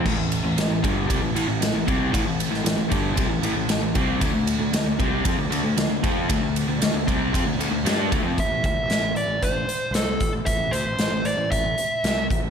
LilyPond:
<<
  \new Staff \with { instrumentName = "Lead electric guitar" } { \time 4/4 \key a \minor \tempo 4 = 115 r1 | r1 | r1 | r1 |
e''8 e''4 d''8 c''4 a'8. r16 | e''8 c''4 d''8 e''4. r8 | }
  \new Staff \with { instrumentName = "Overdriven electric guitar" } { \clef bass \time 4/4 \key a \minor <a, e>16 <a, e>8 <a, e>16 <a, e>16 <a, e>16 <g, d g>8 <c g>16 <a, e>16 <a, e>16 <a, e>16 <a, e>16 <a, e>16 <c g c'>8 | <a, e>16 <a, e>8 <a, e>16 <a, e>16 <a, e>16 <g, d g>8 <c g>16 <a, e>16 <a, e>16 <a, e>16 <a, e>16 <a, e>16 <c g c'>8 | <d a>16 <d a>8 <d a>16 <d a>16 <d a>16 <c g c'>8 <f c'>16 <d a>16 <d a>16 <d a>16 <d a>16 <d a>16 <f c' f'>8 | <d a>16 <d a>8 <d a>16 <d a>16 <d a>16 <c g c'>8 <f c'>16 <d a>16 <d a>16 <d a>16 <g d' g'>8 <d a>16 <f c'>16 |
r1 | r1 | }
  \new Staff \with { instrumentName = "Overdriven electric guitar" } { \clef bass \time 4/4 \key a \minor <a, e>16 <a, e>8 <a, e>16 <a, e>16 <a, e>16 <g, d g>8 <c g>16 <a, e>16 <a, e>16 <a, e>16 <a, e>16 <a, e>16 <c g c'>8 | <a, e>16 <a, e>8 <a, e>16 <a, e>16 <a, e>16 <g, d g>8 <c g>16 <a, e>16 <a, e>16 <a, e>16 <a, e>16 <a, e>16 <c g c'>8 | <d a>16 <d a>8 <d a>16 <d a>16 <d a>16 <c g c'>8 <f c'>16 <d a>16 <d a>16 <d a>16 <d a>16 <d a>16 <f c' f'>8 | <d a>16 <d a>8 <d a>16 <d a>16 <d a>16 <c g c'>8 <f c'>16 <d a>16 <d a>16 <d a>16 <g d' g'>8 <d a>16 <f c'>16 |
r1 | r1 | }
  \new Staff \with { instrumentName = "Picked electric bass" } { \clef bass \time 4/4 \key a \minor a,,16 a,,8 a,,16 a,,16 a,,16 g,,8 c,16 a,,16 a,,16 a,,16 a,,16 a,,16 c,8 | a,,16 a,,8 a,,16 a,,16 a,,16 g,,8 c,16 a,,16 a,,16 a,,16 a,,16 a,,16 c,8 | d,16 d,8 d,16 d,16 d,16 c,8 f,16 d,16 d,16 d,16 d,16 d,16 f,8 | d,16 d,8 d,16 d,16 d,16 c,8 f,16 d,16 d,16 d,16 g,8 d,16 f,16 |
a,,16 a,,16 d,16 a,,16 a,,16 a,,16 a,,16 a,,16 a,,16 a,,16 r8 c,8 a,,16 a,,16 | a,,16 a,,16 d,16 a,,16 a,,16 a,,16 a,,16 a,,16 a,,16 a,,16 r8 c,8 a,,16 a,,16 | }
  \new DrumStaff \with { instrumentName = "Drums" } \drummode { \time 4/4 <cymc bd>8 cymr8 <cymr sn>8 <bd cymr>8 <bd cymr>8 cymr8 <cymr sn>8 <bd cymr>8 | <bd cymr>8 cymr16 sn16 <cymr sn>8 <bd cymr>8 <bd cymr>8 cymr8 <cymr sn>8 <bd cymr>8 | <bd cymr>8 cymr8 <cymr sn>8 <bd cymr>8 <bd cymr>8 cymr8 <cymr sn>8 <bd cymr>8 | <bd cymr>8 cymr8 <cymr sn>8 <bd cymr>8 <bd cymr>8 cymr8 <cymr sn>8 <bd cymr>8 |
<hh bd>8 <hh bd>8 <hh sn>8 hh8 <hh bd>8 hh8 <hh sn>8 <hh bd>8 | <hh bd>8 hh8 <hh sn>8 hh8 <hh bd>8 hh8 <hh sn>8 <hh bd>8 | }
>>